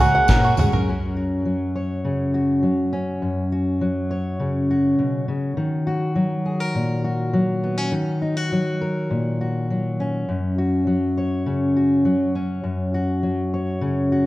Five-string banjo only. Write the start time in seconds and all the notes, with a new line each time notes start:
Already playing: A#4 F#5
0.00 F#4
0.15 F#5
0.29 A#4
0.44 F#4
0.59 F#5
0.73 A#4